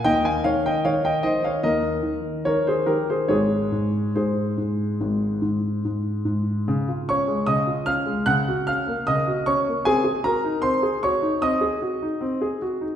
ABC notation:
X:1
M:4/4
L:1/16
Q:1/4=75
K:Db
V:1 name="Grand piano"
[e=g] [fa] [df] [eg] [df] [eg] [ce] [df] [Be]4 [Bd] [Ac] [=GB] [Ac] | [Ad]4 [Ac]8 z4 | z2 [dd']2 [ee']2 [ff']2 [gg']2 [ff']2 [ee']2 [dd']2 | [Aa]2 [Bb]2 [cc']2 [dd']2 [ee']6 z2 |]
V:2 name="Grand piano"
[E,,E,]2 E,2 E,2 E,2 [E,,E,]2 E,2 E,2 E,2 | [A,,,A,,]2 A,,2 A,,2 A,,2 [A,,,A,,]2 A,,2 A,,2 A,,2 | D, F D A, D, F D A, D, G D B, D, G D B, | C A G E C A G E C A G E C A G E |]